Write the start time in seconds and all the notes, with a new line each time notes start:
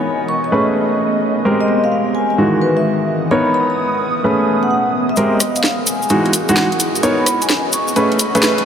Already playing: B3 D#4 A#4 C#5 D#5 G#5
0.29 C#6
0.44 C#6
0.52 A3 C#4 G#4 B4
1.45 G#3 C4 G4 A#4
1.61 D#5
1.68 D#5
1.73 G#3
1.84 F5
1.92 F5
2.15 G#5
2.30 G#5
2.38 D#3 E3 G#3 F#4
2.55 D#6
2.61 B4
2.77 E5
3.31 B3 D#4 A#4 C#5 B5
3.54 B5
3.70 B5
4.24 A3 C#4 G#4 B4
4.63 F#5
4.71 F#5
5.09 E5
5.16 G#3 C4 G4 A#4 E5, closed hi-hat, cabasa
5.32 G#4 D#5
5.40 cross-stick, open hi-hat, cabasa
5.56 F5, closed hi-hat, cabasa
5.63 snare, cabasa
5.87 G#5, open hi-hat, cabasa
6.02 G#5, cabasa
6.09 E3 G#3 D#4 F#4, closed hi-hat, cabasa
6.26 closed hi-hat
6.33 open hi-hat, cabasa
6.49 E3 G#3 D#4 F#4 F#5, closed hi-hat, cabasa
6.53 D#5 F#5, snare, cabasa
6.72 closed hi-hat
6.80 open hi-hat, cabasa
6.95 closed hi-hat, cabasa
7.03 B3 C#4 D#4 A#4 C#5, closed hi-hat, cabasa
7.19 B5
7.26 B5, cross-stick, open hi-hat, cabasa
7.42 G#5, closed hi-hat, cabasa
7.49 snare, cabasa
7.73 C#6, open hi-hat, cabasa
7.88 C#6, cabasa
7.96 A3 C#4 G#4 B4, closed hi-hat, cabasa
8.12 closed hi-hat
8.19 open hi-hat, cabasa
8.35 A3 C#4 G#4 B4, closed hi-hat, cabasa
8.43 snare, cabasa
8.58 closed hi-hat